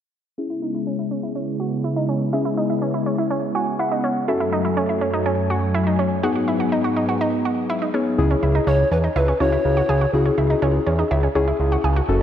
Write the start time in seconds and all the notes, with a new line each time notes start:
0.38 C#3 G#3 B3 C#4 E4 G#4
0.50 E4
0.62 D#4
0.74 E4
0.87 C#4
0.99 E4
1.11 C#4
1.23 E4
1.35 C#4
1.60 F#4
1.84 E4
1.96 D#4
2.09 C#4
2.33 C#4 E4 G#4
2.45 E4
2.57 D#4
2.70 E4
2.82 C#4
2.94 E4
3.06 C#4
3.18 E4
3.31 C#4
3.55 F#4 G#5
3.79 E4 F#5
3.92 D#4
4.04 C#4
4.28 F#2 F#3 A3 C#4 E4 F#4 A4 G#5
4.40 E4
4.53 D#4
4.65 E4
4.77 C#4
4.89 E4
5.01 C#4
5.13 D#4
5.26 C#4
5.50 F#4
5.74 E4
5.87 D#4
5.99 C#4
6.23 G#2 B3 D#4 F#4 G#4
6.36 F#4
6.48 E4
6.60 F#4
6.72 D#4
6.84 F#4
6.96 D#4
7.09 F#4
7.21 D#4
7.45 F#4
7.70 E4
7.82 D#4
7.94 B3 C#4 D#4 G#4
8.18 C#2 C#4 E4 G#4
8.31 C#4
8.43 C#2 E4
8.55 D#4
8.67 C#2 C#4 C#5
8.92 E2 C#4 B4
9.04 D#4
9.16 C#2 E4 B4
9.28 C#4
9.40 C#2 C#4 E4 F#4 C#5
9.52 E4
9.65 C#2
9.77 F#4
9.89 C#2 G#4
10.01 F#4
10.13 C#2 C#4 E4 F#4 G#4
10.26 C#4
10.38 C#2 E4
10.50 D#4
10.62 C#2 C#4
10.87 E2 C#4
10.99 D#4
11.11 C#2 E4
11.23 C#4
11.35 C#2 C#4 E4 G#4
11.48 E4
11.60 C#2
11.72 F#4
11.84 C#2 G#4
11.96 F#4
12.09 F#1 C#4 F#4 A4